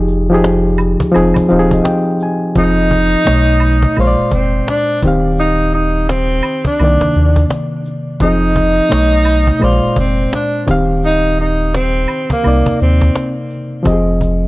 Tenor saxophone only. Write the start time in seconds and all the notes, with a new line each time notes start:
2.58 D#4
3.99 F4
4.34 C4
4.69 D4
5.40 D#4
5.75 D#4
6.10 C4
6.67 D4
8.22 D#4
9.64 F4
9.99 C4
10.34 D4
11.05 D#4
11.40 D#4
11.75 C4
12.32 A#3
12.82 C4